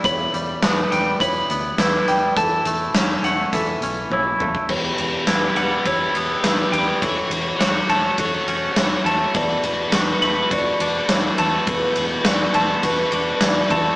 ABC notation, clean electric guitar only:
X:1
M:4/4
L:1/8
Q:1/4=103
K:Edor
V:1 name="Clean electric guitar"
E,, G, B, G, E, B, E G, | E, A, C A, E, C E A, | E,,2 E G, E B, E, G, | E,2 F A, F C E, A, |
E,,2 F A, F D E, A, | E,,2 F A, F D E, A, |]